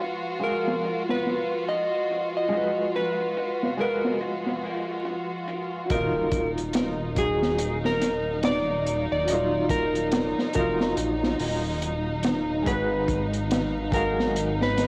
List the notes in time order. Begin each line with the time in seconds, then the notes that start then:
Already playing: F3 F#3 G#3 F4 F#4 B4 F5
0.39 G#3 F#4, closed hi-hat
0.44 A#4 F5
0.68 snare
0.84 closed hi-hat
1.09 B4, snare
1.26 snare, closed hi-hat
1.68 D#5, closed hi-hat
2.10 closed hi-hat
2.37 D#5
2.48 G#3
2.52 F#3, closed hi-hat
2.57 B4
2.95 B4, closed hi-hat
3.20 closed hi-hat
3.37 closed hi-hat
3.63 snare
3.77 G#3 F#4 A#4, closed hi-hat
3.81 B4
4.05 snare
4.21 closed hi-hat
4.46 snare
4.63 open hi-hat
5.05 closed hi-hat
5.47 closed hi-hat
5.86 F#3 F5, closed hi-hat, impact
5.90 D#1 D#4 A#4, kick
5.94 F4
6.32 kick, closed hi-hat
6.58 closed hi-hat
6.73 snare, closed hi-hat
7.15 F#3 D#4 G#4, kick, closed hi-hat
7.19 G#4
7.42 snare
7.58 closed hi-hat
7.85 A#4, snare
8.02 snare, closed hi-hat
8.43 D5, snare, closed hi-hat
8.86 closed hi-hat
9.12 D#1 D5
9.24 F#3, closed hi-hat
9.28 D#4
9.33 F4
9.69 A#4, kick, closed hi-hat
9.95 closed hi-hat
10.12 snare, closed hi-hat
10.39 snare
10.53 F1 F#3 D#4 A#4, kick, closed hi-hat
10.57 F4
10.80 snare
10.97 A#1, closed hi-hat
11.23 snare
11.39 D#1, open hi-hat
11.82 closed hi-hat
12.23 snare, closed hi-hat
12.62 G#3, kick
12.66 G#1 F#4 B4, closed hi-hat
12.71 B4
13.08 kick, closed hi-hat
13.33 closed hi-hat
13.51 snare, closed hi-hat
13.91 G#3 F#4 A#4, kick, closed hi-hat
13.95 F5
14.20 snare
14.36 closed hi-hat
14.61 B4, snare
14.77 snare, closed hi-hat